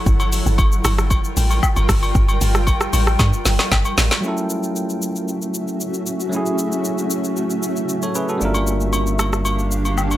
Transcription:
0.06 G1 G3 F4 A#4 G5, kick, shaker
0.20 high agogo, shaker
0.32 open hi-hat, shaker
0.46 G1, shaker
0.58 kick, high agogo, shaker
0.72 shaker
0.84 G1, cross-stick, open hi-hat, high agogo, shaker
0.98 cross-stick, shaker
1.10 kick, high agogo, shaker
1.24 shaker
1.37 A1, open hi-hat, shaker
1.51 high agogo, shaker
1.63 kick, low woodblock, shaker
1.76 G1, high agogo, shaker
1.89 G1, kick, cross-stick, open hi-hat, shaker
2.03 high agogo, shaker
2.15 G1, kick, shaker
2.29 high agogo, shaker
2.41 G1, open hi-hat, shaker
2.55 cross-stick, shaker
2.67 kick, high agogo, shaker
2.81 cross-stick, shaker
2.93 A1, open hi-hat, high agogo, shaker
3.07 cross-stick, shaker
3.19 G2, kick, snare, high agogo, shaker
3.33 shaker
3.46 G1, snare, open hi-hat, shaker
3.59 snare, high agogo, shaker
3.72 G1, kick, snare, low woodblock, shaker
3.85 high agogo, shaker
3.98 A1, snare, open hi-hat, shaker
4.11 snare, high agogo, shaker
4.21 F#3 A3 C#4 F#4 E5, shaker
4.26 E4 A4
4.37 shaker
4.50 shaker
4.63 shaker
4.76 shaker
4.90 shaker
5.02 shaker
5.16 shaker
5.28 shaker
5.42 shaker
5.54 shaker
5.68 shaker
5.81 shaker
5.94 shaker
6.06 shaker
6.20 shaker
6.29 F#3 A3 C#4, shaker
6.35 E4 G#4
6.46 shaker
6.59 shaker
6.72 shaker
6.85 shaker
6.98 shaker
7.11 shaker
7.24 shaker
7.37 shaker
7.50 shaker
7.63 shaker
7.76 shaker
7.89 shaker
8.02 A4 C#5, shaker
8.15 G#4 B4, shaker
8.29 F#4 A4, shaker
8.38 G1 G3 A#3 D4 G4 F5, shaker
8.43 F4 A#4
8.54 high agogo, shaker
8.67 shaker
8.81 shaker
8.93 high agogo, shaker
9.07 shaker
9.19 cross-stick, high agogo, shaker
9.33 cross-stick, shaker
9.45 high agogo, shaker
9.59 shaker
9.71 shaker
9.85 high agogo, shaker
9.98 low woodblock, shaker
10.11 high agogo, shaker

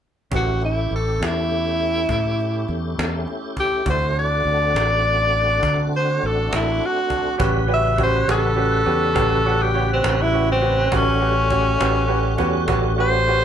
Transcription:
0.31 A1 A3 C#4 E4 G4 B4, cajon bass
0.35 F#4
0.61 E4, cajon slap
0.91 A1, cajon slap
0.96 A4
1.21 E2, cajon slap
1.25 E4
1.51 cajon slap
1.80 cajon slap
2.09 A2, cajon bass
2.39 cajon slap
2.68 E2, cajon slap
2.98 E2, cajon slap
3.27 cajon slap
3.57 G4, cajon bass
3.85 D2 A3 C4 D4 E4 F#4 C5, cajon bass
3.90 C5
4.15 D5, cajon slap
4.45 D2, cajon slap
4.46 cajon slap
4.75 A1, cajon slap
5.04 cajon slap
5.34 cajon slap
5.63 D3, cajon bass
5.92 C5, cajon slap
6.22 A1 A4, cajon slap
6.53 A1 E4, cajon slap
6.81 cajon slap
6.86 F#4
7.10 cajon bass
7.38 A1 C#3 G3 C#4 F#4 G4 B4, cajon bass
7.67 C#4 F#4 G4 B4
7.74 E5
7.97 C#4 F#4 G4 B4, cajon bass
8.03 C5
8.27 A1 C#4 F#4 G4 B4, cajon slap
8.31 A4
8.55 C#4 F#4 G4 B4
8.85 E2 C#4 F#4 G4 B4, cajon slap
9.14 A1 C#4 F#4 G4 B4, cajon bass
9.45 C#4 F#4 G4 A4
9.63 G4
9.73 C#4 F#4 G4 C#5, cajon slap
9.93 C4
10.03 A1 C#4 F#4 G4 B4, cajon slap
10.22 E4
10.33 C#4 F#4 G4 B4
10.52 C4
10.61 C#4 F#4 G4 B4, cajon slap
10.90 A1 G3 A3 C#4 F#4 G4 B4, cajon bass
10.96 C#4
11.20 C#4 F#4 G4 B4
11.50 C#4 F#4 G4 C#5, cajon bass
11.79 A1 C#4 F#4 G4 B4, cajon slap
12.07 C#4 F#4 G4 B4
12.38 E2 C#4 F#4 G4 B4, cajon bass
12.68 A1 C#4 F#4 G4 B4, cajon bass
12.98 C#4 F#4 G4 B4 C5
13.27 C#4 F#4 G4 B4, cajon slap

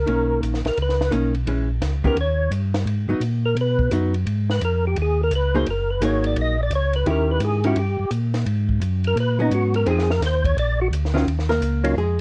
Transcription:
Already playing: A#4
0.06 B1 D#3 A#3 C#4, ride
0.42 A#1, hi-hat pedal, ride
0.54 snare
0.65 A#1 A#4, snare, ride
0.77 C#2, ride
0.82 B4
0.89 snare
1.01 snare
1.11 B1 D#3 A#3 C#4, hi-hat pedal, ride
1.35 ride
1.46 A#1 E3 G#3 C#4, ride
1.81 C#2, snare, hi-hat pedal, ride
2.04 C#2 D#3 B3 C#4 G4 A#4, kick
2.16 D#2, ride
2.21 C#5
2.51 G2, hi-hat pedal, ride
2.74 snare, ride
2.86 G#2, ride
3.08 G#2 F#3 B3 D#4
3.20 A#2, hi-hat pedal, ride
3.46 A#4
3.55 B2, ride
3.61 B4
3.79 kick
3.91 F#2 F#3 B3 D#4, hi-hat pedal, ride
4.14 ride
4.26 G#2, ride
4.50 B4, snare
4.61 F2 A#4, hi-hat pedal, ride
4.87 G4
4.96 D#2, ride
5.02 G#4
5.23 A#4
5.31 C#2, hi-hat pedal, ride
5.35 B4
5.54 F#3 A#3 D#4 G#4 C5
5.66 F#1, ride
5.70 A#4
5.91 B4
6.01 G#1 F#3 A#3 D#4 G#4 C#5, hi-hat pedal, ride
6.24 D5, ride
6.36 A#1, ride
6.41 D#5
6.63 D5
6.71 C#2, hi-hat pedal, ride
6.75 C#5
6.93 B4, ride
7.06 D#2 D#3 C#4 E4 G4, ride
7.11 A#4
7.31 B4
7.40 G#2, hi-hat pedal, ride
7.44 G#4
7.64 D#3 C#4 E4 F#4 G4, ride
7.75 G2 G4, ride
7.99 G2
8.11 A#2, hi-hat pedal, ride
8.34 snare, ride
8.46 G#2, ride
8.69 kick
8.80 F#2, hi-hat pedal, ride
9.04 A#4, ride
9.16 A#2, ride
9.20 B4
9.39 F#3 B3 C#4 D#4
9.51 G#2 F#4, hi-hat pedal, ride
9.74 A#4, ride
9.86 F2 F3 C4 D#4 G#4, ride
9.91 G#4
9.99 snare
10.10 A#4, snare
10.21 D#2, snare, hi-hat pedal, ride
10.26 C5
10.44 C#5, kick, ride
10.57 A#1 D5, ride
10.81 F#4
10.91 D2, hi-hat pedal, ride
11.05 snare
11.14 D#3 F#3 C#4 F4, snare
11.27 D#2, ride
11.39 snare
11.49 A#3 A#4, snare
11.61 C#2, hi-hat pedal, ride
11.84 F#3 A#3 C#4 D#4 F4, ride
11.97 F2 G#3 G#4

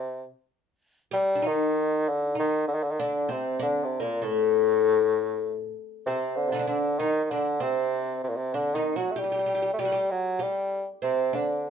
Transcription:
Already playing: C3
1.11 G3 G4
1.35 D4
1.42 D#4
1.47 D#3
2.08 D3
2.35 D#4
2.39 D#3
2.68 D3
2.75 D#3
2.83 D3
2.91 D#3
3.00 D3 D4
3.29 C3 C4
3.59 D3 D4
3.84 C3
4.00 A#2 A#3
4.22 A2 A3
6.06 C3 C4
6.36 D3
6.47 C3 D3
6.52 D4 D#4
6.59 D4
6.67 D3 D4
6.99 D#3 D#4
7.24 D#3
7.30 D3 D4
7.60 C3 C4
8.24 C3
8.29 A#2
8.37 C3
8.54 D3 D4
8.75 D#3 D#4
8.96 F#3 F#4
9.11 A3
9.16 G3 G4
9.24 G4
9.32 G4
9.39 G4
9.46 G4
9.55 G4
9.62 G4
9.74 A3
9.79 G3 G4
9.85 F#4
9.92 G4
10.11 F#3
10.39 G3 G4
11.02 C3 C4
11.33 D3 D4

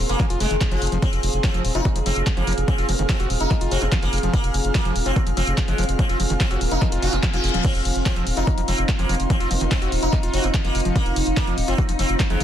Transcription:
Already playing: C4 F4 G#4 F5 C6
0.00 A#3
0.09 F1 A#3, closed hi-hat
0.20 F3, kick, clap, closed hi-hat
0.30 F1 F4, closed hi-hat
0.40 F1 G#3, open hi-hat
0.51 F1 D#3, closed hi-hat
0.61 F3, kick, clap, closed hi-hat
0.71 F#1 F3, closed hi-hat
0.82 F1, open hi-hat
0.87 closed hi-hat
0.92 F1 F3, closed hi-hat
1.02 F3 C4, kick, closed hi-hat
1.13 F1, closed hi-hat
1.23 F1, open hi-hat
1.34 F1, closed hi-hat
1.44 F3 C4, kick, clap, closed hi-hat
1.54 F1 F3, closed hi-hat
1.65 D#1 F6, open hi-hat
1.75 F1 D#4 F4, closed hi-hat
1.85 F#4, kick, closed hi-hat
1.96 F1 F3, closed hi-hat
2.06 F1 F3 C4, open hi-hat
2.16 F1, closed hi-hat
2.27 F3, kick, clap, closed hi-hat
2.37 F#1 F3 A#3 C4, closed hi-hat
2.47 F1 F3, open hi-hat
2.52 closed hi-hat
2.58 F1, closed hi-hat
2.68 F3 C4, kick, closed hi-hat
2.78 F1 F4, closed hi-hat
2.89 F1 F3 A#3, open hi-hat
2.99 F1 D#3 A#3, closed hi-hat
3.09 F3 C4, kick, clap, closed hi-hat
3.20 F1 F#4, closed hi-hat
3.30 D#1, open hi-hat
3.40 F1 D#4, closed hi-hat
3.51 F3, kick, clap, closed hi-hat
3.61 F1 F4, closed hi-hat
3.71 F1 C4 F#4, open hi-hat
3.82 F1 G#3, closed hi-hat
3.92 F3, kick, clap, closed hi-hat
4.02 F#1 F3 A#3, closed hi-hat
4.13 F1, open hi-hat
4.18 closed hi-hat
4.23 F1 F3, closed hi-hat
4.33 F3 A#3, kick, closed hi-hat
4.44 F1, closed hi-hat
4.54 F1, open hi-hat
4.65 F1, closed hi-hat
4.75 F3 A#3, kick, clap, closed hi-hat
4.85 F1 F3, closed hi-hat
4.96 D#1, open hi-hat
5.06 F1 C4 F4, closed hi-hat
5.16 F#4, kick, closed hi-hat
5.27 F1 F3, closed hi-hat
5.37 F1 F3 C4, open hi-hat
5.47 F1, closed hi-hat
5.58 F3, kick, clap, closed hi-hat
5.68 F#1 F3 G#3 C4, closed hi-hat
5.78 F1 F3, open hi-hat
5.84 closed hi-hat
5.89 F1, closed hi-hat
5.99 F3 C4, kick, closed hi-hat
6.09 F1 F4, closed hi-hat
6.20 F1 F3, open hi-hat
6.30 F1 D#3, closed hi-hat
6.40 F3 C4, kick, clap, closed hi-hat
6.51 F1 C4 F#4, closed hi-hat
6.61 D#1 A#3, open hi-hat
6.71 F1 D#4, closed hi-hat
6.82 F3, kick, clap, closed hi-hat, reverse cymbal
6.92 F1 F4, closed hi-hat
7.02 F1 F4 F#4, open hi-hat
7.13 F1 G#3, closed hi-hat
7.23 F3, kick, clap, closed hi-hat
7.34 F1 F3 F4, closed hi-hat
7.44 F1, open hi-hat
7.49 closed hi-hat
7.54 D#1 F3, closed hi-hat
7.65 F3 C4 D#4, kick, closed hi-hat, crash
7.75 F1, closed hi-hat
7.85 F1, open hi-hat
7.96 F1, closed hi-hat
8.06 F3 C4, kick, clap, closed hi-hat
8.16 F1 F3, closed hi-hat
8.27 D#1 C6, open hi-hat
8.37 F1 D#4 F4, closed hi-hat
8.47 F#4, kick, closed hi-hat
8.58 F1 F3, closed hi-hat
8.68 F1 F3 C4, open hi-hat
8.78 F1, closed hi-hat
8.89 F3, kick, clap, closed hi-hat
8.99 F#1 F3 A#3 C4, closed hi-hat
9.09 F1 F3, open hi-hat
9.15 closed hi-hat
9.20 F1, closed hi-hat
9.30 F3 C4, kick, closed hi-hat
9.40 F1 F4, closed hi-hat
9.51 F1 F3 A#3, open hi-hat
9.61 F1 D#3 A#3, closed hi-hat
9.71 F3 C4, kick, clap, closed hi-hat
9.82 F1 F#4, closed hi-hat
9.92 D#1, open hi-hat
10.02 F1 D#4, closed hi-hat
10.13 F3, kick, clap, closed hi-hat
10.23 F1 F4, closed hi-hat
10.34 F1 C4 F#4, open hi-hat
10.44 F1 G#3, closed hi-hat
10.54 F3, kick, clap, closed hi-hat
10.65 F#1 F3 A#3, closed hi-hat
10.75 F1, open hi-hat
10.80 closed hi-hat
10.85 F1 F3, closed hi-hat
10.96 A#3, kick, closed hi-hat
11.04 F1 A#5, closed hi-hat
11.16 F1, open hi-hat
11.27 F1, closed hi-hat
11.37 F3 A#3, kick, clap, closed hi-hat
11.47 F1 F3, closed hi-hat
11.58 D#1, open hi-hat
11.68 F1 C4 F4, closed hi-hat
11.78 F#4, kick, closed hi-hat
11.89 F1 F3, closed hi-hat
11.99 F1 F3 C4, open hi-hat
12.09 F1, closed hi-hat
12.20 F3, kick, clap, closed hi-hat
12.30 F#1 F3 G#3 C4, closed hi-hat
12.40 F1 F3, open hi-hat

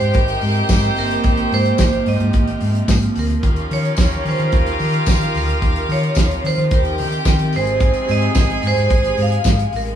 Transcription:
Already playing: C3 F3 G#3 D#4 G4 C5 G5
0.01 G#2, closed hi-hat
0.14 G#1 A#4, kick, closed hi-hat
0.28 closed hi-hat
0.41 G#2, open hi-hat
0.55 closed hi-hat
0.69 G#2, kick, snare, closed hi-hat, tambourine
0.83 closed hi-hat
0.96 G1 A#3 A#4, open hi-hat
1.11 closed hi-hat
1.24 G#1, kick, closed hi-hat
1.37 closed hi-hat
1.52 G#2 C5, open hi-hat
1.66 closed hi-hat
1.78 G#1, kick, snare, closed hi-hat, tambourine
1.93 closed hi-hat
2.06 G#2 D#5, open hi-hat
2.20 G#2, closed hi-hat
2.33 G#1, kick, closed hi-hat
2.48 closed hi-hat
2.60 G#2, open hi-hat
2.75 closed hi-hat
2.88 G#2, kick, snare, closed hi-hat, tambourine
3.02 closed hi-hat
3.15 D2 A#4, open hi-hat
3.30 closed hi-hat
3.43 D#2 D#3 C#4 F4 G4 A#4 F5, kick, closed hi-hat
3.56 closed hi-hat
3.71 D#3 C#5, open hi-hat
3.85 closed hi-hat
3.97 D#2, kick, snare, closed hi-hat, tambourine
4.12 closed hi-hat
4.25 D#3 C5, open hi-hat
4.39 D#3, closed hi-hat
4.52 D#2 A#4, kick, closed hi-hat
4.66 closed hi-hat
4.79 D#3, open hi-hat
4.94 closed hi-hat
5.06 D#3, kick, snare, closed hi-hat, tambourine
5.21 closed hi-hat
5.34 D2 A#4, open hi-hat
5.49 closed hi-hat
5.62 D#2 C3, kick, closed hi-hat
5.76 closed hi-hat
5.89 D#3 C#5, open hi-hat
6.03 closed hi-hat
6.15 D#2, kick, snare, closed hi-hat, tambourine
6.31 closed hi-hat
6.44 D#3 C5, open hi-hat
6.58 D#3, closed hi-hat
6.64 C5
6.71 D#2 G4 A#4 G5, kick, closed hi-hat
6.85 closed hi-hat
6.98 D#3, open hi-hat
7.12 closed hi-hat
7.25 D#3, kick, snare, closed hi-hat, tambourine
7.39 closed hi-hat
7.53 G#1 G#3 C4 D#4 G#4 C5 G#5, open hi-hat
7.67 closed hi-hat
7.80 kick, closed hi-hat
7.94 closed hi-hat
8.08 G#2 D#5, open hi-hat
8.22 closed hi-hat
8.35 G#1, kick, snare, closed hi-hat, tambourine
8.50 closed hi-hat
8.63 G#2, open hi-hat
8.67 C5
8.77 G#2, closed hi-hat
8.90 G#1, kick, closed hi-hat
9.04 closed hi-hat
9.17 G#2, open hi-hat
9.22 F5
9.32 closed hi-hat
9.44 G#2, kick, snare, closed hi-hat, tambourine
9.59 closed hi-hat
9.73 A1 A#4, open hi-hat
9.87 closed hi-hat

